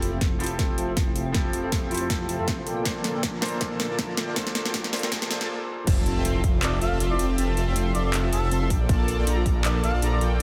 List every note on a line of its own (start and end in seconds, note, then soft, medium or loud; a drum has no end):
0.00 0.11 F1 loud
0.00 2.64 C3 medium
0.00 0.37 F3 medium
0.00 2.64 F3 medium
0.00 2.64 A3 medium
0.00 0.38 C4 medium
0.00 0.11 C4 medium
0.00 0.38 E4 medium
0.00 2.64 E4 medium
0.00 0.11 F4 medium
0.00 0.12 F4 loud
0.00 0.39 G4 medium
0.00 0.39 A4 medium
0.00 0.11 A4 medium
0.00 0.11 E5 medium
0.00 0.11 A5 loud
0.00 closed hi-hat medium
0.00 riser medium
0.13 0.20 F1 loud
0.13 0.19 C4 medium
0.13 0.19 F4 medium
0.13 0.19 A4 medium
0.13 0.18 A4 medium
0.13 0.19 E5 medium
0.13 0.19 G5 loud
0.21 0.38 F1 loud
0.21 0.38 C4 medium
0.21 0.27 C4 loud
0.21 0.38 F4 medium
0.21 0.38 A4 medium
0.21 0.38 E5 medium
0.21 0.38 C6 medium
0.21 kick loud
0.21 snare soft
0.21 closed hi-hat medium
0.32 0.37 E4 loud
0.39 0.57 F1 medium
0.39 0.57 F3 loud
0.39 0.57 C4 medium
0.39 0.57 E4 medium
0.39 0.57 F4 medium
0.39 0.46 F4 medium
0.39 0.58 G4 medium
0.39 0.57 A4 medium
0.39 0.58 A4 loud
0.39 0.57 E5 medium
0.39 0.57 C6 loud
0.39 closed hi-hat soft
0.44 closed hi-hat medium
0.46 closed hi-hat medium
0.51 0.58 C5 medium
0.59 0.76 F1 loud
0.59 0.65 C4 medium
0.59 0.76 C4 medium
0.59 0.76 F4 medium
0.59 0.76 A4 medium
0.59 0.76 E5 medium
0.59 0.76 A5 loud
0.59 kick medium
0.59 snare medium
0.59 closed hi-hat medium
0.69 0.77 F4 medium
0.78 0.86 F1 loud
0.78 0.86 C4 loud
0.78 0.86 F4 medium
0.78 0.87 F4 loud
0.78 0.86 A4 medium
0.78 0.86 E5 medium
0.78 0.86 A5 loud
0.78 closed hi-hat medium
0.88 0.95 F1 loud
0.88 0.95 C4 medium
0.88 0.95 F4 medium
0.88 0.95 A4 medium
0.88 0.93 A4 medium
0.88 0.95 E5 medium
0.88 0.95 A5 loud
0.97 1.14 F1 medium
0.97 1.14 C4 loud
0.97 1.03 C4 loud
0.97 1.14 F4 medium
0.97 1.14 A4 medium
0.97 1.14 E5 medium
0.97 1.14 C6 loud
0.97 kick medium
0.97 snare medium
0.97 closed hi-hat medium
1.07 1.12 E4 loud
1.16 1.33 F1 medium
1.16 1.33 C4 medium
1.16 1.33 F4 medium
1.16 1.22 F4 medium
1.16 1.33 A4 medium
1.16 1.33 E5 medium
1.16 1.33 G5 loud
1.16 closed hi-hat medium
1.26 1.34 C5 medium
1.32 1.52 F1 medium
1.32 1.87 F3 loud
1.32 1.88 C4 medium
1.32 1.51 C4 medium
1.32 1.41 C4 medium
1.32 1.89 E4 medium
1.32 1.51 F4 medium
1.32 1.89 G4 medium
1.32 1.51 A4 medium
1.32 1.51 E5 medium
1.32 1.51 A5 loud
1.32 kick loud
1.32 snare medium
1.32 closed hi-hat medium
1.36 1.90 A4 loud
1.45 1.52 F4 medium
1.53 1.62 F1 medium
1.53 1.62 C4 medium
1.53 1.62 F4 medium
1.53 1.63 F4 loud
1.53 1.62 A4 medium
1.53 1.62 E5 medium
1.53 1.62 A5 loud
1.53 closed hi-hat medium
1.64 1.71 F1 loud
1.64 1.70 C4 medium
1.64 1.70 F4 medium
1.64 1.70 A4 medium
1.64 1.69 A4 medium
1.64 1.70 E5 medium
1.64 1.70 G5 loud
1.72 1.89 F1 loud
1.72 1.89 C4 medium
1.72 1.78 C4 loud
1.72 1.89 F4 medium
1.72 1.89 A4 medium
1.72 1.89 E5 medium
1.72 1.89 C6 medium
1.72 kick loud
1.72 snare medium
1.72 closed hi-hat medium
1.83 1.88 E4 loud
1.89 2.08 F1 medium
1.89 2.64 F3 medium
1.89 2.65 C4 medium
1.89 2.08 C4 medium
1.89 2.65 E4 medium
1.89 2.08 F4 medium
1.89 1.97 F4 medium
1.89 2.66 G4 medium
1.89 2.08 A4 medium
1.89 2.08 E5 medium
1.89 2.08 C6 loud
1.89 closed hi-hat soft
1.93 2.66 A4 loud
1.93 closed hi-hat medium
1.97 closed hi-hat medium
2.01 2.09 C5 medium
2.10 2.27 F1 loud
2.10 2.16 C4 medium
2.10 2.27 C4 medium
2.10 2.27 F4 medium
2.10 2.27 A4 medium
2.10 2.27 E5 medium
2.10 2.27 A5 loud
2.10 kick loud
2.10 snare medium
2.10 closed hi-hat medium
2.20 2.27 F4 medium
2.29 2.37 F1 medium
2.29 2.37 C4 loud
2.29 2.38 F4 loud
2.29 2.37 F4 medium
2.29 2.37 A4 medium
2.29 2.37 E5 medium
2.29 2.37 A5 loud
2.29 closed hi-hat medium
2.39 2.46 F2 loud
2.39 2.46 C4 medium
2.39 2.46 F4 medium
2.39 2.44 A4 medium
2.39 2.46 A4 medium
2.39 2.46 E5 medium
2.39 2.46 A5 loud
2.48 2.65 F1 loud
2.48 2.54 C4 loud
2.48 2.65 C4 loud
2.48 2.65 F4 medium
2.48 2.65 A4 medium
2.48 2.65 E5 medium
2.48 2.65 C6 loud
2.48 kick loud
2.48 snare medium
2.48 closed hi-hat medium
2.58 2.63 E4 loud
2.67 2.84 A#1 medium
2.67 5.47 D3 medium
2.67 5.47 F3 medium
2.67 2.83 A#3 medium
2.67 5.47 A#3 medium
2.67 2.83 F4 medium
2.67 2.73 A4 medium
2.67 2.83 A4 medium
2.67 5.47 A4 medium
2.67 2.83 D5 medium
2.67 2.83 G5 loud
2.67 closed hi-hat medium
2.77 2.84 D5 medium
2.83 3.03 A#1 loud
2.83 3.39 A#2 medium
2.83 3.40 A#3 medium
2.83 3.02 A#3 medium
2.83 2.92 D4 medium
2.83 3.40 D4 medium
2.83 3.02 F4 medium
2.83 3.02 A4 medium
2.83 3.41 A4 medium
2.83 3.02 D5 medium
2.83 3.02 A5 loud
2.83 kick loud
2.83 snare medium
2.83 closed hi-hat medium
2.87 3.41 C5 medium
2.96 3.03 A4 medium
3.04 3.13 A#1 loud
3.04 3.13 A#3 medium
3.04 3.13 F4 medium
3.04 3.14 A4 loud
3.04 3.13 A4 medium
3.04 3.13 D5 medium
3.04 3.13 A5 loud
3.04 snare medium
3.04 closed hi-hat medium
3.15 3.22 A#1 medium
3.15 3.21 A#3 medium
3.15 3.21 F4 medium
3.15 3.21 A4 medium
3.15 3.20 A#4 medium
3.15 3.21 D5 medium
3.15 3.21 G5 loud
3.23 3.40 A#1 loud
3.23 3.40 A#3 medium
3.23 3.29 D4 loud
3.23 3.40 F4 medium
3.23 3.40 A4 medium
3.23 3.40 D5 medium
3.23 3.40 A#5 medium
3.23 kick loud
3.23 snare medium
3.23 closed hi-hat medium
3.34 3.39 F4 loud
3.41 3.59 A#1 medium
3.41 3.59 A#2 loud
3.41 3.59 A#3 medium
3.41 3.59 D4 medium
3.41 3.59 F4 medium
3.41 3.48 A4 medium
3.41 3.59 A4 medium
3.41 3.60 A4 medium
3.41 3.60 C5 loud
3.41 3.59 D5 medium
3.41 3.59 A#5 loud
3.41 snare medium
3.41 closed hi-hat soft
3.46 closed hi-hat medium
3.48 closed hi-hat medium
3.53 3.60 D5 medium
3.61 3.78 A#1 loud
3.61 3.78 A#3 medium
3.61 3.67 D4 medium
3.61 3.78 F4 medium
3.61 3.78 A4 medium
3.61 3.78 D5 medium
3.61 3.78 A5 loud
3.61 kick loud
3.61 snare medium
3.61 closed hi-hat medium
3.71 3.79 A4 medium
3.80 3.88 A#1 loud
3.80 3.88 A#3 loud
3.80 3.88 F4 medium
3.80 3.89 A4 loud
3.80 3.88 A4 medium
3.80 3.88 D5 medium
3.80 3.88 A5 loud
3.80 snare medium
3.80 closed hi-hat medium
3.90 3.97 A#1 loud
3.90 3.97 A#3 medium
3.90 3.97 F4 medium
3.90 3.97 A4 medium
3.90 3.95 A#4 medium
3.90 3.97 D5 medium
3.90 3.97 A5 loud
3.99 4.16 A#1 loud
3.99 4.16 A#3 loud
3.99 4.05 D4 loud
3.99 4.16 F4 medium
3.99 4.16 A4 medium
3.99 4.16 D5 medium
3.99 4.16 A#5 loud
3.99 kick loud
3.99 snare medium
3.99 closed hi-hat medium
4.09 4.14 F4 loud
4.17 4.35 A#1 loud
4.17 4.34 A#3 medium
4.17 4.34 F4 medium
4.17 4.24 A4 medium
4.17 4.34 A4 medium
4.17 4.34 D5 medium
4.17 4.34 G5 loud
4.17 snare medium
4.17 closed hi-hat medium
4.28 4.35 D5 medium
4.34 4.54 A#1 loud
4.34 4.90 A#2 loud
4.34 4.90 A#3 medium
4.34 4.53 A#3 medium
4.34 4.91 D4 medium
4.34 4.43 D4 medium
4.34 4.53 F4 medium
4.34 4.53 A4 medium
4.34 4.91 A4 medium
4.34 4.92 C5 loud
4.34 4.53 D5 medium
4.34 4.53 A5 loud
4.34 kick loud
4.34 snare medium
4.34 closed hi-hat medium
4.47 4.54 A4 medium
4.47 snare medium
4.55 4.64 A#1 loud
4.55 4.64 A#3 medium
4.55 4.64 F4 medium
4.55 4.64 A4 medium
4.55 4.64 A4 loud
4.55 4.64 D5 medium
4.55 4.64 A5 loud
4.55 snare medium
4.55 closed hi-hat medium
4.66 4.72 A#1 loud
4.66 4.72 A#3 medium
4.66 4.72 F4 medium
4.66 4.72 A4 medium
4.66 4.71 A#4 medium
4.66 4.72 D5 medium
4.66 4.72 G5 loud
4.66 snare medium
4.74 4.91 A#1 loud
4.74 4.91 A#3 medium
4.74 4.80 D4 loud
4.74 4.91 F4 medium
4.74 4.91 A4 medium
4.74 4.91 D5 medium
4.74 4.91 A#5 medium
4.74 kick loud
4.74 snare loud
4.74 closed hi-hat medium
4.84 4.89 F4 loud
4.84 snare medium
4.92 5.10 A#1 loud
4.92 5.27 A#2 medium
4.92 5.28 A#3 medium
4.92 5.10 A#3 medium
4.92 5.29 D4 medium
4.92 5.10 F4 medium
4.92 4.99 A4 medium
4.92 5.10 A4 medium
4.92 5.29 A4 medium
4.92 5.29 C5 loud
4.92 5.10 D5 medium
4.92 5.10 A#5 loud
4.92 snare loud
4.92 closed hi-hat soft
4.96 closed hi-hat medium
4.99 closed hi-hat medium
5.03 5.11 D5 medium
5.03 snare medium
5.12 5.29 A#1 loud
5.12 5.29 A#3 medium
5.12 5.18 D4 medium
5.12 5.29 F4 medium
5.12 5.29 A4 medium
5.12 5.29 D5 medium
5.12 5.29 A5 loud
5.12 kick loud
5.12 snare loud
5.12 closed hi-hat medium
5.22 5.30 A4 medium
5.22 snare medium
5.29 5.39 A#1 loud
5.29 5.49 A#2 medium
5.29 5.49 A#3 medium
5.29 5.39 A#3 loud
5.29 5.50 D4 medium
5.29 5.39 F4 loud
5.29 5.39 A4 medium
5.29 5.50 A4 medium
5.29 5.37 D5 medium
5.29 5.39 D5 medium
5.29 5.39 A5 loud
5.29 snare loud
5.29 closed hi-hat medium
5.33 5.51 C5 medium
5.41 5.48 A#1 loud
5.41 5.48 A#3 medium
5.41 5.48 F4 medium
5.41 5.48 A4 medium
5.41 5.44 D5 loud
5.41 5.48 D5 medium
5.41 5.48 A5 loud
5.41 snare medium
5.87 6.04 F1 loud
5.87 6.04 C4 medium
5.87 5.93 C4 medium
5.87 6.04 F4 medium
5.87 6.04 A4 medium
5.87 6.04 E5 medium
5.87 6.04 A5 loud
5.87 kick loud
5.87 closed hi-hat medium
5.87 crash loud
5.87 impact medium
5.98 6.05 F4 medium
6.06 6.15 F1 loud
6.06 6.15 C4 medium
6.06 6.15 F4 medium
6.06 6.15 F4 loud
6.06 6.15 A4 medium
6.06 6.15 E5 medium
6.06 6.15 A5 loud
6.06 closed hi-hat medium
6.16 6.23 F1 loud
6.16 6.23 C4 medium
6.16 6.23 F4 medium
6.16 6.22 A4 medium
6.16 6.23 A4 medium
6.16 6.23 E5 medium
6.16 6.23 G5 loud
6.25 6.42 F1 loud
6.25 6.42 C4 medium
6.25 6.31 C4 loud
6.25 6.42 F4 medium
6.25 6.42 A4 medium
6.25 6.42 E5 medium
6.25 6.42 C6 medium
6.25 closed hi-hat medium
6.35 6.40 E4 loud
6.44 6.61 F1 loud
6.44 6.61 C4 medium
6.44 6.50 F4 medium
6.44 6.61 F4 medium
6.44 6.61 A4 medium
6.44 6.61 E5 medium
6.44 6.61 C6 loud
6.44 kick medium
6.44 closed hi-hat medium
6.54 6.62 C5 medium
6.63 6.80 F1 loud
6.63 6.69 C4 medium
6.63 6.80 C4 medium
6.63 6.80 F4 medium
6.63 6.80 A4 medium
6.63 6.79 D5 medium
6.63 6.80 E5 medium
6.63 6.80 A5 loud
6.63 clap loud
6.63 closed hi-hat medium
6.73 6.80 F4 medium
6.82 6.90 F1 loud
6.82 6.90 C4 loud
6.82 6.91 F4 loud
6.82 6.90 F4 loud
6.82 6.90 A4 medium
6.82 6.90 E5 loud
6.82 6.98 F5 medium
6.82 6.90 A5 loud
6.82 closed hi-hat medium
6.92 6.99 F1 loud
6.92 6.99 C4 loud
6.92 6.99 F4 medium
6.92 6.97 A4 medium
6.92 6.99 A4 medium
6.92 6.99 E5 medium
6.92 6.99 A5 loud
7.00 7.18 F1 loud
7.00 7.07 C4 loud
7.00 7.17 C4 loud
7.00 7.17 F4 medium
7.00 7.17 A4 medium
7.00 7.17 E5 medium
7.00 7.17 C6 loud
7.00 closed hi-hat medium
7.11 7.16 E4 loud
7.11 7.27 D5 medium
7.19 7.37 F1 medium
7.19 7.36 C4 medium
7.19 7.26 F4 medium
7.19 7.36 F4 medium
7.19 7.36 A4 medium
7.19 7.36 E5 medium
7.19 7.36 G5 loud
7.19 closed hi-hat medium
7.30 7.37 C5 medium
7.38 7.55 F1 loud
7.38 7.55 C4 medium
7.38 7.45 C4 medium
7.38 7.55 F4 medium
7.38 7.55 A4 medium
7.38 7.55 E5 medium
7.38 7.55 A5 loud
7.38 closed hi-hat medium
7.49 7.56 F4 medium
7.57 7.65 F1 loud
7.57 7.66 C4 medium
7.57 7.66 F4 medium
7.57 7.66 F4 loud
7.57 7.66 A4 medium
7.57 7.66 E5 medium
7.57 7.66 A5 loud
7.57 closed hi-hat medium
7.67 7.74 F1 loud
7.67 7.74 C4 medium
7.67 7.74 F4 medium
7.67 7.73 A4 medium
7.67 7.74 A4 medium
7.67 7.74 E5 medium
7.67 7.74 G5 loud
7.76 7.93 F1 loud
7.76 7.82 C4 loud
7.76 7.93 C4 medium
7.76 7.93 F4 medium
7.76 7.93 A4 medium
7.76 7.93 E5 medium
7.76 7.93 C6 medium
7.76 closed hi-hat medium
7.86 7.91 E4 loud
7.95 8.12 F1 loud
7.95 8.12 C4 medium
7.95 8.01 F4 medium
7.95 8.12 F4 medium
7.95 8.12 A4 medium
7.95 8.02 D5 medium
7.95 8.12 E5 medium
7.95 8.12 C6 loud
7.95 closed hi-hat medium
8.05 8.13 C5 medium
8.05 8.11 D5 medium
8.14 8.31 F1 loud
8.14 8.20 C4 medium
8.14 8.31 C4 medium
8.14 8.31 F4 medium
8.14 8.31 A4 medium
8.14 8.31 E5 medium
8.14 8.31 A5 loud
8.14 clap loud
8.14 closed hi-hat medium
8.24 8.31 F4 medium
8.32 8.41 F1 loud
8.32 8.41 C4 loud
8.32 8.42 F4 loud
8.32 8.41 F4 medium
8.32 8.50 A4 medium
8.32 8.41 A4 medium
8.32 8.41 E5 medium
8.32 8.41 A5 loud
8.32 closed hi-hat medium
8.43 8.50 F1 loud
8.43 8.49 C4 medium
8.43 8.49 F4 medium
8.43 8.48 A4 medium
8.43 8.50 A4 medium
8.43 8.49 E5 medium
8.43 8.50 A5 loud
8.51 8.72 F1 loud
8.51 8.68 C4 medium
8.51 8.58 C4 loud
8.51 8.68 F4 medium
8.51 8.68 A4 medium
8.51 8.58 A4 medium
8.51 8.68 E5 medium
8.51 8.68 C6 loud
8.51 closed hi-hat medium
8.62 8.67 E4 loud
8.62 8.67 A4 medium
8.70 8.88 A#1 medium
8.70 8.87 A#3 medium
8.70 8.87 F4 medium
8.70 8.76 A4 medium
8.70 8.87 A4 medium
8.70 8.87 D5 medium
8.70 8.87 G5 loud
8.70 kick medium
8.70 closed hi-hat medium
8.81 8.88 D5 medium
8.89 9.06 A#1 loud
8.89 9.06 A#3 medium
8.89 8.95 D4 medium
8.89 9.06 F4 medium
8.89 9.06 A4 medium
8.89 9.06 D5 medium
8.89 9.06 A5 loud
8.89 kick loud
8.89 closed hi-hat medium
9.00 9.07 A4 medium
9.08 9.16 A#1 loud
9.08 9.17 A#3 medium
9.08 9.17 F4 medium
9.08 9.17 A4 loud
9.08 9.17 A4 medium
9.08 9.17 D5 medium
9.08 9.17 A5 loud
9.08 closed hi-hat medium
9.18 9.25 A#1 loud
9.18 9.25 A#3 medium
9.18 9.25 F4 medium
9.18 9.25 A4 medium
9.18 9.23 A#4 medium
9.18 9.25 D5 medium
9.18 9.25 G5 loud
9.27 9.44 A#1 loud
9.27 9.44 A#3 medium
9.27 9.33 D4 loud
9.27 9.44 F4 medium
9.27 9.44 A4 medium
9.27 9.44 D5 medium
9.27 9.44 A#5 medium
9.27 closed hi-hat medium
9.37 9.42 F4 loud
9.46 9.63 A#1 loud
9.46 9.63 A#3 medium
9.46 9.63 F4 medium
9.46 9.52 A4 medium
9.46 9.63 A4 medium
9.46 9.63 D5 medium
9.46 9.63 A#5 loud
9.46 kick medium
9.46 closed hi-hat medium
9.56 9.64 D5 medium
9.65 9.82 A#1 loud
9.65 9.82 A#3 medium
9.65 9.71 D4 medium
9.65 9.82 F4 medium
9.65 9.82 A4 medium
9.65 9.82 D5 medium
9.65 9.82 A5 loud
9.65 clap loud
9.65 closed hi-hat medium
9.75 9.82 A4 medium
9.83 9.92 A#1 loud
9.83 9.92 A#3 loud
9.83 9.92 F4 medium
9.83 9.93 A4 loud
9.83 9.92 A4 loud
9.83 9.92 D5 medium
9.83 10.00 F5 loud
9.83 9.92 A5 loud
9.83 closed hi-hat medium
9.94 10.01 A#1 loud
9.94 10.01 A#3 medium
9.94 10.00 F4 medium
9.94 10.01 A4 medium
9.94 9.99 A#4 medium
9.94 10.00 D5 medium
9.94 10.01 A5 loud
10.02 10.20 A#1 loud
10.02 10.19 A#3 loud
10.02 10.09 D4 loud
10.02 10.19 F4 medium
10.02 10.19 A4 medium
10.02 10.19 D5 medium
10.02 10.19 A#5 loud
10.02 closed hi-hat medium
10.13 10.18 F4 loud
10.13 10.29 D5 medium
10.21 10.39 A#1 medium
10.21 10.38 A#3 medium
10.21 10.38 F4 medium
10.21 10.27 A4 medium
10.21 10.38 A4 medium
10.21 10.38 D5 medium
10.21 10.38 G5 loud
10.21 closed hi-hat medium
10.32 10.39 D5 medium